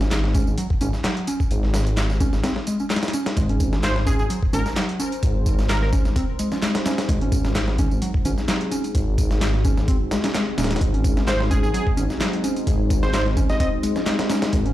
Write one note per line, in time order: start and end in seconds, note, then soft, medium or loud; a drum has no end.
0.00 0.42 G#1 loud
0.00 0.05 C#4 medium
0.00 snare medium
0.00 tambourine soft
0.11 snare loud
0.11 clap loud
0.11 closed hi-hat medium
0.11 tambourine soft
0.24 snare medium
0.34 0.47 C#4 loud
0.34 kick medium
0.34 closed hi-hat medium
0.34 tambourine medium
0.47 0.55 G#1 medium
0.47 tambourine soft
0.58 0.66 F#3 medium
0.58 closed hi-hat medium
0.58 tambourine soft
0.70 kick loud
0.81 0.91 G#1 loud
0.81 0.89 C#4 loud
0.81 closed hi-hat medium
0.81 tambourine medium
0.93 snare soft
0.93 tambourine soft
1.04 1.27 F#3 medium
1.04 snare loud
1.04 clap loud
1.04 closed hi-hat medium
1.04 tambourine soft
1.17 closed hi-hat soft
1.27 1.40 C#4 loud
1.27 closed hi-hat medium
1.27 tambourine medium
1.40 kick medium
1.40 tambourine soft
1.51 2.28 G#1 loud
1.51 closed hi-hat medium
1.51 tambourine soft
1.63 snare soft
1.74 snare loud
1.74 closed hi-hat medium
1.74 tambourine medium
1.87 closed hi-hat soft
1.87 tambourine soft
1.97 snare loud
1.97 clap loud
1.97 closed hi-hat medium
1.97 tambourine soft
2.10 snare soft
2.10 tambourine soft
2.20 2.32 C#4 loud
2.20 kick medium
2.20 closed hi-hat medium
2.20 tambourine medium
2.33 2.41 G#1 medium
2.33 snare soft
2.33 tambourine soft
2.44 2.52 C4 loud
2.44 snare loud
2.44 closed hi-hat medium
2.44 tambourine soft
2.56 snare medium
2.67 2.75 G#3 medium
2.67 closed hi-hat medium
2.67 tambourine medium
2.80 2.84 C#4 medium
2.80 tambourine soft
2.90 2.99 G#3 medium
2.90 snare loud
2.90 clap loud
2.90 closed hi-hat medium
2.90 tambourine soft
2.96 snare loud
2.96 closed hi-hat medium
3.03 snare medium
3.03 closed hi-hat medium
3.03 tambourine soft
3.08 snare medium
3.08 closed hi-hat medium
3.13 3.26 C#4 loud
3.13 closed hi-hat medium
3.13 tambourine medium
3.26 snare loud
3.26 closed hi-hat medium
3.26 tambourine soft
3.37 4.14 G#1 loud
3.37 14.73 G#3 medium
3.37 3.45 G#3 medium
3.37 14.73 C4 medium
3.37 14.73 D#4 medium
3.37 14.73 F#4 medium
3.37 7.08 C5 loud
3.37 kick loud
3.37 closed hi-hat medium
3.37 tambourine soft
3.49 3.72 C#4 medium
3.49 closed hi-hat soft
3.60 kick medium
3.60 closed hi-hat medium
3.60 tambourine medium
3.73 3.77 C#4 medium
3.73 snare medium
3.73 tambourine soft
3.83 3.97 C5 medium
3.83 snare loud
3.83 clap loud
3.83 closed hi-hat medium
3.83 tambourine soft
3.96 snare medium
4.06 4.18 C#4 loud
4.06 4.15 G#4 medium
4.06 kick medium
4.06 closed hi-hat medium
4.06 tambourine medium
4.19 4.27 G#1 medium
4.19 4.26 G#4 medium
4.19 tambourine soft
4.30 4.38 F#3 medium
4.30 closed hi-hat medium
4.30 tambourine soft
4.43 kick loud
4.53 4.63 G#1 loud
4.53 4.61 C#4 loud
4.53 4.67 A#4 medium
4.53 closed hi-hat medium
4.53 tambourine medium
4.66 snare soft
4.66 tambourine soft
4.76 4.99 F#3 medium
4.76 snare loud
4.76 clap loud
4.76 closed hi-hat medium
4.76 tambourine soft
4.89 closed hi-hat soft
5.00 5.12 C#4 loud
5.00 closed hi-hat medium
5.00 tambourine medium
5.12 closed hi-hat soft
5.12 tambourine soft
5.23 6.00 G#1 loud
5.23 kick loud
5.23 closed hi-hat medium
5.23 tambourine soft
5.46 kick loud
5.46 closed hi-hat medium
5.46 tambourine medium
5.59 snare medium
5.59 tambourine soft
5.69 5.77 A#4 medium
5.69 snare loud
5.69 clap loud
5.69 closed hi-hat medium
5.69 tambourine soft
5.82 5.89 A#4 medium
5.82 snare soft
5.93 6.05 C#4 loud
5.93 kick loud
5.93 closed hi-hat medium
5.93 tambourine medium
6.05 6.13 G#1 medium
6.05 snare soft
6.05 tambourine soft
6.16 6.24 C4 loud
6.16 kick loud
6.16 closed hi-hat medium
6.16 tambourine soft
6.39 6.47 G#3 medium
6.39 closed hi-hat medium
6.39 tambourine medium
6.52 6.56 C#4 medium
6.52 snare medium
6.52 tambourine soft
6.62 6.70 G#3 medium
6.62 snare loud
6.62 clap loud
6.62 closed hi-hat medium
6.62 tambourine soft
6.75 snare loud
6.75 closed hi-hat medium
6.86 6.98 C#4 loud
6.86 snare loud
6.86 closed hi-hat medium
6.86 tambourine medium
6.98 snare loud
6.98 closed hi-hat medium
6.98 tambourine soft
7.09 7.86 G#1 loud
7.09 7.17 G#3 medium
7.09 10.80 G#4 loud
7.09 kick loud
7.09 closed hi-hat medium
7.09 tambourine soft
7.21 7.44 C#4 medium
7.21 closed hi-hat soft
7.32 kick loud
7.32 closed hi-hat medium
7.32 tambourine medium
7.45 7.49 C#4 medium
7.45 snare medium
7.45 tambourine soft
7.55 snare loud
7.55 clap loud
7.55 closed hi-hat medium
7.55 tambourine soft
7.68 snare medium
7.78 7.91 C#4 loud
7.78 kick medium
7.78 closed hi-hat medium
7.78 tambourine medium
7.91 7.99 G#1 medium
7.91 tambourine soft
8.02 8.10 F#3 medium
8.02 closed hi-hat medium
8.02 tambourine soft
8.14 kick loud
8.25 8.35 G#1 loud
8.25 8.33 C#4 loud
8.25 closed hi-hat medium
8.25 tambourine medium
8.38 snare soft
8.38 tambourine soft
8.48 8.71 F#3 medium
8.48 snare loud
8.48 clap loud
8.48 closed hi-hat loud
8.48 tambourine soft
8.61 closed hi-hat soft
8.71 8.84 C#4 loud
8.71 closed hi-hat medium
8.71 tambourine medium
8.84 closed hi-hat soft
8.84 tambourine soft
8.95 9.72 G#1 loud
8.95 kick loud
8.95 closed hi-hat medium
8.95 tambourine soft
9.18 kick medium
9.18 closed hi-hat medium
9.18 tambourine medium
9.31 snare medium
9.31 tambourine soft
9.41 snare loud
9.41 clap loud
9.41 closed hi-hat medium
9.41 tambourine soft
9.54 snare soft
9.65 9.77 C#4 loud
9.65 kick loud
9.65 closed hi-hat medium
9.65 tambourine medium
9.77 9.85 G#1 medium
9.77 snare soft
9.77 tambourine soft
9.88 9.96 C4 loud
9.88 kick loud
9.88 closed hi-hat medium
9.88 tambourine soft
10.11 10.19 G#3 medium
10.11 snare loud
10.11 closed hi-hat medium
10.11 tambourine medium
10.24 10.28 C#4 medium
10.24 snare loud
10.24 closed hi-hat medium
10.24 tambourine soft
10.35 10.43 G#3 medium
10.35 snare loud
10.35 clap loud
10.35 closed hi-hat medium
10.35 tambourine soft
10.57 10.76 D#1 loud
10.57 10.70 C#4 loud
10.57 snare loud
10.57 closed hi-hat medium
10.57 tambourine medium
10.64 snare loud
10.64 closed hi-hat medium
10.70 snare medium
10.70 closed hi-hat medium
10.70 tambourine soft
10.76 snare medium
10.76 closed hi-hat medium
10.81 11.59 G#1 loud
10.81 10.89 G#3 medium
10.81 14.52 C5 loud
10.81 kick loud
10.81 closed hi-hat medium
10.81 tambourine soft
10.94 11.16 C#4 medium
10.94 closed hi-hat soft
11.04 kick medium
11.04 closed hi-hat medium
11.04 tambourine medium
11.17 11.21 C#4 medium
11.17 snare medium
11.17 tambourine soft
11.27 11.41 C5 loud
11.27 snare loud
11.27 clap loud
11.27 closed hi-hat medium
11.27 tambourine soft
11.40 snare medium
11.50 11.63 C#4 loud
11.50 11.59 G#4 medium
11.50 kick medium
11.50 closed hi-hat medium
11.50 tambourine medium
11.63 11.72 G#1 medium
11.63 11.70 G#4 medium
11.63 tambourine soft
11.74 11.82 F#3 medium
11.74 11.88 G#4 loud
11.74 closed hi-hat medium
11.74 tambourine soft
11.87 kick loud
11.97 12.07 G#1 loud
11.97 12.05 C#4 loud
11.97 closed hi-hat medium
11.97 tambourine medium
12.10 snare soft
12.10 tambourine soft
12.20 12.43 F#3 medium
12.20 snare loud
12.20 clap loud
12.20 closed hi-hat medium
12.20 tambourine soft
12.33 closed hi-hat soft
12.44 12.56 C#4 loud
12.44 closed hi-hat medium
12.44 tambourine medium
12.56 closed hi-hat soft
12.56 tambourine soft
12.67 13.45 G#1 loud
12.67 kick loud
12.67 closed hi-hat medium
12.67 tambourine soft
12.90 kick medium
12.90 closed hi-hat medium
12.90 tambourine medium
13.03 13.10 C5 medium
13.03 snare medium
13.03 tambourine soft
13.14 13.22 C5 medium
13.14 snare loud
13.14 clap loud
13.14 closed hi-hat medium
13.14 tambourine soft
13.26 snare soft
13.37 13.49 C#4 loud
13.37 kick loud
13.37 closed hi-hat medium
13.37 tambourine medium
13.49 13.58 G#1 medium
13.49 13.56 D#5 medium
13.49 snare soft
13.49 tambourine soft
13.60 13.68 C4 loud
13.60 13.68 D#5 medium
13.60 kick loud
13.60 closed hi-hat medium
13.60 tambourine soft
13.83 13.91 G#3 medium
13.83 closed hi-hat medium
13.83 tambourine medium
13.96 14.00 C#4 medium
13.96 snare medium
13.96 tambourine soft
14.06 14.14 G#3 medium
14.06 snare loud
14.06 clap loud
14.06 closed hi-hat medium
14.06 tambourine soft
14.19 snare loud
14.19 closed hi-hat medium
14.30 14.42 C#4 loud
14.30 snare loud
14.30 closed hi-hat medium
14.30 tambourine medium
14.42 snare loud
14.42 closed hi-hat medium
14.42 tambourine soft
14.53 14.73 G#1 loud
14.53 14.61 G#3 medium
14.53 kick loud
14.53 closed hi-hat medium
14.53 tambourine soft
14.66 14.73 C#4 medium
14.66 closed hi-hat soft